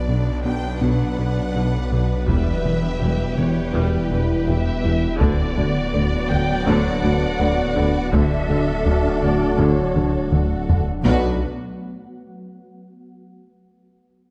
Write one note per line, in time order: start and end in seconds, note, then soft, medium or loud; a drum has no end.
0.00 2.30 B1 medium
0.00 5.17 B2 medium
0.00 2.24 F#3 medium
0.00 5.16 B3 medium
0.00 5.17 B3 medium
0.00 2.24 D4 medium
0.00 5.16 B4 medium
0.00 5.17 B4 medium
0.00 0.41 D5 medium
0.00 2.24 D5 medium
0.08 0.23 B1 soft
0.08 0.17 B1 soft
0.08 0.16 B2 soft
0.08 0.30 B2 medium
0.08 0.17 D3 soft
0.08 0.31 D4 medium
0.44 0.60 B1 soft
0.44 0.54 B1 soft
0.44 0.52 B2 soft
0.44 0.54 D3 soft
0.44 0.68 F#3 medium
0.44 0.67 B3 medium
0.44 0.81 G5 medium
0.81 0.96 B1 medium
0.81 0.90 B1 medium
0.81 0.89 B2 medium
0.81 1.04 B2 medium
0.81 1.16 F#3 medium
0.81 1.04 B3 medium
0.81 2.28 F#5 medium
1.18 1.33 B1 soft
1.18 1.26 B1 soft
1.18 1.26 B2 soft
1.18 1.41 B2 medium
1.18 1.27 D3 soft
1.18 1.40 B4 medium
1.55 1.63 B1 soft
1.55 1.70 B1 soft
1.55 1.63 B2 medium
1.55 1.77 B2 medium
1.55 1.64 D3 medium
1.55 1.77 B4 medium
1.91 2.06 B1 soft
1.91 2.00 B1 soft
1.91 1.99 B2 soft
1.91 2.14 B2 medium
1.91 2.00 D3 medium
1.91 2.14 B4 medium
2.27 5.23 E1 medium
2.27 2.36 E1 medium
2.27 2.43 E1 medium
2.27 2.36 E2 medium
2.27 2.51 E2 medium
2.27 2.50 E3 medium
2.27 5.16 G3 medium
2.27 2.63 G3 medium
2.27 8.14 B3 medium
2.27 5.21 E4 medium
2.27 5.17 E4 medium
2.27 5.17 G4 medium
2.27 3.35 E5 medium
2.27 5.21 G5 medium
2.27 taiko medium
2.65 2.79 E1 medium
2.65 2.74 E1 medium
2.65 2.73 E2 medium
2.65 2.74 E3 soft
2.65 2.88 E3 medium
2.65 2.86 B3 medium
2.65 taiko mid soft
3.00 3.16 E1 medium
3.00 3.10 E1 medium
3.00 3.08 E2 medium
3.00 3.24 E2 medium
3.00 3.10 E3 medium
3.00 3.23 G3 medium
3.38 3.47 E1 medium
3.38 3.53 E1 medium
3.38 3.46 E2 medium
3.38 3.46 E3 medium
3.38 3.61 E3 medium
3.38 3.60 B3 medium
3.38 3.75 C#5 medium
3.38 taiko mid medium
3.74 3.83 E1 medium
3.74 3.90 E1 medium
3.74 3.82 E2 medium
3.74 3.97 E2 medium
3.74 3.97 E3 medium
3.74 4.09 G3 medium
3.74 4.47 B4 medium
4.11 4.26 E1 medium
4.11 4.20 E1 medium
4.11 4.19 E2 medium
4.11 4.34 E2 medium
4.11 4.20 E3 medium
4.11 4.33 E4 medium
4.47 4.56 E1 medium
4.47 4.63 E1 medium
4.47 4.55 E2 medium
4.47 4.71 E2 medium
4.47 4.56 E3 medium
4.47 4.70 E4 medium
4.47 5.20 E5 loud
4.84 4.99 E1 medium
4.84 4.93 E1 medium
4.84 4.92 E2 medium
4.84 5.07 E2 medium
4.84 4.92 E3 medium
4.84 5.07 E4 medium
4.84 taiko mid soft
5.20 11.05 D1 medium
5.20 5.29 D2 medium
5.20 5.43 D2 medium
5.20 5.30 D2 medium
5.20 5.36 D2 medium
5.20 5.54 D3 medium
5.20 10.71 D3 medium
5.20 7.96 F#3 medium
5.20 7.95 B3 medium
5.20 8.09 B3 medium
5.20 5.43 B3 loud
5.20 7.95 D4 medium
5.20 8.14 D4 medium
5.20 10.82 F#4 medium
5.20 6.28 D5 loud
5.20 8.10 D5 medium
5.20 taiko loud
5.57 5.65 D2 medium
5.57 5.66 D2 medium
5.57 5.73 D2 medium
5.57 5.65 D3 medium
5.57 5.79 D3 medium
5.57 5.80 F#4 medium
5.57 taiko mid soft
5.93 6.01 D2 medium
5.93 6.09 D2 medium
5.93 6.16 D2 medium
5.93 6.03 D2 medium
5.93 6.01 D3 medium
5.93 6.16 D4 medium
6.29 6.38 D2 medium
6.29 6.45 D2 medium
6.29 6.40 D2 medium
6.29 6.37 D3 medium
6.29 6.52 D3 medium
6.29 6.53 F#3 medium
6.29 6.66 G5 loud
6.29 taiko mid medium
6.65 6.74 D2 loud
6.65 6.89 D2 medium
6.65 6.76 D2 medium
6.65 6.82 D2 loud
6.65 7.00 D3 loud
6.65 6.89 B3 loud
6.65 8.13 F#5 loud
7.03 7.11 D2 medium
7.03 7.12 D2 medium
7.03 7.19 D2 medium
7.03 7.26 D2 medium
7.03 7.11 D3 medium
7.03 7.26 B4 medium
7.39 7.48 D2 medium
7.39 7.62 D2 medium
7.39 7.48 D2 medium
7.39 7.55 D2 medium
7.39 7.47 D3 medium
7.39 7.63 B4 medium
7.76 7.84 D2 medium
7.76 7.91 D2 medium
7.76 7.99 D2 medium
7.76 7.84 D3 medium
7.76 7.99 B4 medium
7.76 taiko mid medium
8.12 8.21 D2 loud
8.12 8.21 D2 medium
8.12 8.28 D2 loud
8.12 8.36 D2 loud
8.12 8.47 D3 medium
8.12 8.35 D3 loud
8.12 11.05 F#3 medium
8.12 10.70 A3 loud
8.12 11.06 A3 medium
8.12 10.69 D4 medium
8.12 10.86 D4 medium
8.12 10.70 F#4 medium
8.12 10.83 A4 medium
8.12 9.23 E5 loud
8.12 taiko loud
8.49 8.64 D2 medium
8.49 8.57 D2 medium
8.49 8.58 D2 medium
8.49 8.71 D3 medium
8.49 8.58 D3 medium
8.49 8.72 A3 medium
8.49 taiko mid medium
8.85 8.93 D2 medium
8.85 9.00 D2 medium
8.85 8.94 D2 medium
8.85 9.08 D2 medium
8.85 8.94 D3 medium
8.85 9.09 F#3 medium
9.22 9.30 D2 medium
9.22 9.31 D2 medium
9.22 9.38 D2 medium
9.22 9.31 D3 medium
9.22 9.45 D3 medium
9.22 9.45 A3 medium
9.22 9.59 D5 loud
9.22 taiko mid medium
9.58 9.73 D2 loud
9.58 9.66 D2 medium
9.58 9.81 D2 medium
9.58 9.67 D2 medium
9.58 9.94 D3 medium
9.58 9.82 D3 loud
9.58 10.33 C#5 loud
9.95 10.10 D2 medium
9.95 10.03 D2 medium
9.95 10.18 D2 medium
9.95 10.04 D2 medium
9.95 10.04 D3 medium
9.95 10.19 D4 medium
9.95 taiko mid medium
10.32 10.40 D2 medium
10.32 10.47 D2 medium
10.32 10.40 D2 medium
10.32 10.54 D2 medium
10.32 10.41 D3 medium
10.32 10.55 D4 medium
10.32 11.04 F#5 medium
10.32 taiko mid medium
10.69 10.77 D2 medium
10.69 10.91 D2 medium
10.69 10.77 D2 medium
10.69 10.84 D2 medium
10.69 10.78 D3 medium
10.69 10.91 D4 medium
10.69 taiko low medium
11.05 11.38 B1 loud
11.05 11.46 B1 medium
11.05 11.47 B1 loud
11.05 11.47 B2 medium
11.05 11.39 B2 medium
11.05 11.47 F#3 medium
11.05 11.39 B3 medium
11.05 11.39 D4 medium
11.05 11.47 D4 medium
11.05 11.39 F#4 medium
11.05 11.47 F#4 medium
11.05 11.47 B4 medium
11.05 11.47 D5 loud
11.05 taiko loud